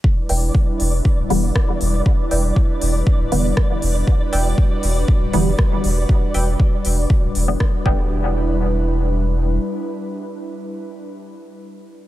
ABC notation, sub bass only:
X:1
M:4/4
L:1/16
Q:1/4=119
K:Em
V:1 name="Sub bass" clef=bass
z2 E,,,2 z2 E,,,2 z D,,, E,,,2 z2 E,,,2 | z2 E,,,2 z2 E,,,2 z D,,, E,,,2 z2 E,,,2 | z2 E,,,2 z2 E,,,2 z D,,, E,,,2 z2 E,,,2 | z2 E,,,2 z2 E,,,2 z D,,, E,,,2 z2 E,,,2- |
E,,,12 z4 | z16 |]